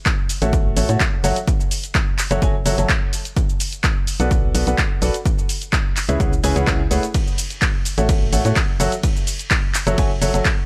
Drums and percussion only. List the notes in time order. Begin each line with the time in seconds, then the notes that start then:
0.06 kick, clap, closed hi-hat, shaker
0.29 open hi-hat, shaker
0.42 closed hi-hat, shaker
0.53 kick, closed hi-hat, shaker
0.77 open hi-hat, shaker
0.89 closed hi-hat, shaker
1.00 kick, clap, closed hi-hat, shaker
1.24 open hi-hat, shaker
1.36 closed hi-hat, shaker
1.48 kick, closed hi-hat, shaker
1.60 shaker
1.71 open hi-hat, shaker
1.84 closed hi-hat, shaker
1.95 kick, clap, closed hi-hat, shaker
2.18 clap, open hi-hat, shaker
2.31 closed hi-hat, shaker
2.42 kick, closed hi-hat, shaker
2.66 open hi-hat, shaker
2.78 closed hi-hat, shaker
2.89 kick, clap, closed hi-hat, shaker
3.13 open hi-hat, shaker
3.25 closed hi-hat, shaker
3.36 kick, closed hi-hat, shaker
3.49 shaker
3.60 open hi-hat, shaker
3.73 closed hi-hat, shaker
3.84 kick, clap, closed hi-hat, shaker
4.07 open hi-hat, shaker
4.20 closed hi-hat, shaker
4.31 kick, closed hi-hat, shaker
4.55 open hi-hat, shaker
4.67 closed hi-hat, shaker
4.78 kick, clap, closed hi-hat, shaker
5.02 open hi-hat, shaker
5.14 closed hi-hat, shaker
5.25 kick, closed hi-hat, shaker
5.39 shaker
5.49 open hi-hat, shaker
5.62 closed hi-hat, shaker
5.73 kick, clap, closed hi-hat, shaker
5.96 clap, open hi-hat, shaker
6.09 closed hi-hat, shaker
6.20 kick, closed hi-hat, shaker
6.33 shaker
6.44 open hi-hat, shaker
6.56 closed hi-hat, shaker
6.67 kick, clap, closed hi-hat, shaker
6.91 open hi-hat, shaker
7.03 closed hi-hat, shaker
7.14 kick, closed hi-hat, ride, shaker
7.27 shaker
7.38 open hi-hat, shaker
7.50 closed hi-hat, shaker
7.62 kick, clap, closed hi-hat, ride, shaker
7.85 open hi-hat, shaker
7.98 closed hi-hat, shaker
8.09 kick, closed hi-hat, ride, shaker
8.33 open hi-hat, shaker
8.45 closed hi-hat, shaker
8.56 kick, clap, closed hi-hat, ride, shaker
8.80 open hi-hat, shaker
8.92 closed hi-hat, shaker
9.03 kick, closed hi-hat, ride, shaker
9.16 shaker
9.27 open hi-hat, shaker
9.39 closed hi-hat, shaker
9.51 kick, clap, closed hi-hat, ride, shaker
9.74 clap, open hi-hat, shaker
9.87 closed hi-hat, shaker
9.98 kick, closed hi-hat, ride, shaker
10.22 open hi-hat, shaker
10.34 closed hi-hat, shaker
10.45 kick, clap, closed hi-hat, ride, shaker